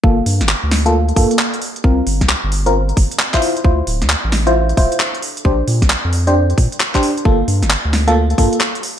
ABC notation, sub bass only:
X:1
M:4/4
L:1/16
Q:"Swing 16ths" 1/4=133
K:Gdor
V:1 name="Sub bass" clef=bass
G,,, z G,, G,,, z D,,4- D,, G,, z4 z | C,, z G,,, C,, z G,,,4- G,,, G,,, z4 z | D,, z D,,, D,, z A,,,4- A,,, D,,, z4 z | B,,, z B,, B,,, z F,,4- F,, B,, z4 z |
G,,, z G,, G,,, z D,,4- D,, G,, z4 z |]